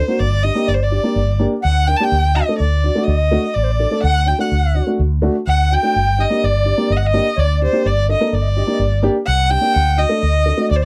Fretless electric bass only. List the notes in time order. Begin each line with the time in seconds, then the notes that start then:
0.20 G1
0.68 G1
1.16 G1
1.65 D2
2.12 D2
2.60 D2
3.08 D2
3.56 A1
4.04 D2
4.52 D2
4.99 D2
5.47 D2
5.96 G1
6.44 G1
6.90 G1
7.38 D2
7.86 G1
8.33 G1
8.79 G1
9.28 C2
9.76 D2
10.23 D2
10.71 D2